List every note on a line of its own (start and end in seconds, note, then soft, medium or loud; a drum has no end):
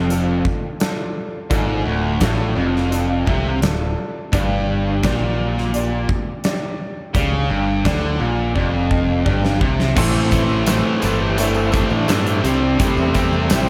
0.00 0.41 F1 loud
0.00 0.43 F2 loud
0.09 0.66 D4 medium
0.09 0.66 F4 medium
0.09 0.66 A4 medium
0.09 closed hi-hat medium
0.45 kick medium
0.80 1.36 D4 medium
0.80 1.37 F4 medium
0.80 1.37 A4 medium
0.80 snare loud
0.80 closed hi-hat medium
1.50 1.84 G#1 medium
1.50 1.85 G#2 loud
1.50 2.06 D4 medium
1.50 2.07 F4 medium
1.50 2.07 A4 loud
1.50 kick loud
1.50 closed hi-hat medium
1.85 2.18 D1 medium
1.85 2.20 D2 loud
2.20 2.54 A1 medium
2.20 2.55 A2 loud
2.20 2.77 D4 loud
2.20 2.78 F4 medium
2.20 2.78 A4 medium
2.20 kick medium
2.20 snare loud
2.20 closed hi-hat medium
2.56 3.23 F1 loud
2.56 3.25 F2 loud
2.76 snare soft
2.91 3.48 D4 medium
2.91 3.48 F4 medium
2.91 3.48 A4 medium
2.91 closed hi-hat medium
3.26 3.60 C2 medium
3.26 3.61 C3 medium
3.26 3.44 E5 medium
3.26 kick medium
3.45 3.61 F5 medium
3.61 3.95 D1 medium
3.61 3.90 D2 medium
3.61 4.19 D4 medium
3.61 4.19 F4 medium
3.61 4.19 A4 medium
3.61 3.95 A5 medium
3.61 snare loud
3.61 closed hi-hat medium
3.99 4.31 A5 medium
4.32 4.99 G1 medium
4.32 5.02 G2 loud
4.32 4.89 D4 medium
4.32 4.89 G4 medium
4.32 4.90 D5 medium
4.32 kick loud
4.32 closed hi-hat medium
5.03 6.05 A#1 medium
5.03 6.08 A#2 loud
5.03 5.59 D4 loud
5.03 5.60 G4 medium
5.03 5.60 D5 loud
5.03 kick medium
5.03 snare loud
5.03 closed hi-hat medium
5.58 snare soft
5.74 6.30 D4 medium
5.74 6.31 G4 medium
5.74 6.31 D5 loud
5.74 closed hi-hat medium
6.09 kick medium
6.44 7.00 D4 medium
6.44 7.01 G4 medium
6.44 7.01 D5 loud
6.44 snare loud
6.44 closed hi-hat medium
7.14 7.48 C#2 medium
7.14 7.48 C#3 medium
7.14 7.71 G4 medium
7.14 7.72 D5 medium
7.14 kick loud
7.14 closed hi-hat medium
7.49 7.83 G1 loud
7.49 7.84 G2 loud
7.85 8.18 D2 loud
7.85 8.19 D3 loud
7.85 8.41 D4 medium
7.85 8.42 G4 medium
7.85 8.42 D5 loud
7.85 kick medium
7.85 snare loud
7.85 closed hi-hat medium
8.18 8.53 A#1 loud
8.18 8.54 A#2 medium
8.53 9.22 F1 medium
8.53 9.24 F2 medium
8.53 9.11 D4 medium
8.53 9.12 G4 medium
8.53 9.12 D5 medium
8.53 kick medium
8.91 kick medium
9.25 9.59 G1 medium
9.25 9.60 G2 loud
9.25 9.82 D4 medium
9.25 9.82 G4 medium
9.25 9.83 D5 medium
9.25 kick medium
9.45 snare medium
9.60 9.94 C2 medium
9.60 9.95 C3 loud
9.60 kick loud
9.80 snare medium
9.95 10.44 A1 loud
9.95 10.29 A2 medium
9.95 10.31 E3 loud
9.95 10.43 A3 medium
9.95 10.31 A3 loud
9.95 10.44 C4 medium
9.95 10.53 C4 loud
9.95 10.44 E4 medium
9.95 10.53 E4 loud
9.95 10.54 A4 loud
9.95 10.54 C5 loud
9.95 kick loud
9.95 crash loud
10.13 tambourine soft
10.31 10.65 A2 medium
10.31 10.67 E3 medium
10.31 10.66 A3 medium
10.31 kick medium
10.31 closed hi-hat medium
10.31 tambourine medium
10.49 10.82 A1 medium
10.49 tambourine soft
10.66 11.00 A2 loud
10.66 11.02 E3 loud
10.66 11.02 A3 loud
10.66 11.24 C4 medium
10.66 11.24 E4 medium
10.66 11.24 A4 medium
10.66 11.25 C5 loud
10.66 snare loud
10.66 closed hi-hat loud
10.66 tambourine loud
11.00 11.82 G1 medium
11.00 11.37 A2 medium
11.00 11.37 E3 medium
11.00 11.38 A3 medium
11.00 11.04 G#4 medium
11.00 closed hi-hat medium
11.00 tambourine medium
11.05 11.21 A4 medium
11.22 11.38 G4 loud
11.38 11.72 A2 medium
11.38 11.72 E3 medium
11.38 11.73 A3 loud
11.38 11.71 A3 medium
11.38 11.95 C4 medium
11.38 11.71 C4 soft
11.38 11.56 D4 loud
11.38 11.95 E4 medium
11.38 11.72 E4 medium
11.38 11.95 A4 medium
11.38 11.96 C5 medium
11.38 closed hi-hat loud
11.53 11.57 G#4 medium
11.53 tambourine medium
11.58 11.73 A4 loud
11.72 12.07 A2 medium
11.72 12.08 E3 loud
11.72 12.08 A3 medium
11.72 kick loud
11.72 closed hi-hat medium
11.72 tambourine medium
11.77 11.92 G4 medium
11.90 12.07 A2 medium
11.90 12.09 D4 medium
11.90 tambourine soft
12.08 12.41 G2 loud
12.08 12.42 A2 loud
12.08 12.42 E3 loud
12.08 12.42 A3 loud
12.08 12.42 C4 medium
12.08 12.43 E4 medium
12.08 12.11 G#4 medium
12.08 12.45 A4 medium
12.08 12.43 C5 medium
12.08 snare loud
12.08 closed hi-hat loud
12.08 tambourine loud
12.13 12.27 A4 loud
12.27 12.45 G4 medium
12.27 closed hi-hat medium
12.44 12.76 C2 loud
12.44 12.78 C3 loud
12.44 12.79 G3 medium
12.44 13.29 C4 medium
12.44 12.79 C4 loud
12.44 13.29 E4 medium
12.44 13.29 G4 medium
12.44 13.29 C5 medium
12.44 closed hi-hat medium
12.48 12.81 D4 medium
12.79 13.13 C3 medium
12.79 13.15 G3 loud
12.79 13.14 C4 loud
12.79 13.50 C4 loud
12.79 kick loud
12.79 closed hi-hat medium
12.83 13.48 A3 medium
12.97 13.52 E2 medium
12.97 tambourine soft
13.14 13.47 C3 medium
13.14 13.49 G3 loud
13.14 13.49 C4 loud
13.14 kick medium
13.14 closed hi-hat medium
13.14 tambourine medium
13.32 tambourine soft
13.49 13.69 A1 loud
13.49 13.69 C3 loud
13.49 13.69 G3 loud
13.49 13.69 G3 medium
13.49 13.69 C4 loud
13.49 13.69 C4 medium
13.49 13.69 E4 medium
13.49 13.69 G4 medium
13.49 snare loud
13.49 closed hi-hat loud
13.49 tambourine loud
13.53 13.69 E4 medium
13.53 13.69 C5 medium